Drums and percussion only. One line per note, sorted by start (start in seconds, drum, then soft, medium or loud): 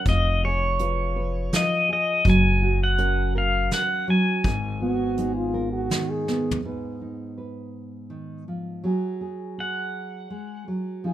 0.05 kick medium
0.05 closed hi-hat soft
0.79 closed hi-hat soft
1.52 snare medium
1.52 closed hi-hat medium
2.25 kick medium
2.25 closed hi-hat soft
2.98 closed hi-hat soft
3.71 snare medium
3.71 closed hi-hat soft
4.44 kick medium
4.44 closed hi-hat soft
5.17 closed hi-hat soft
5.91 snare medium
5.91 closed hi-hat soft
6.28 snare soft
6.51 floor tom medium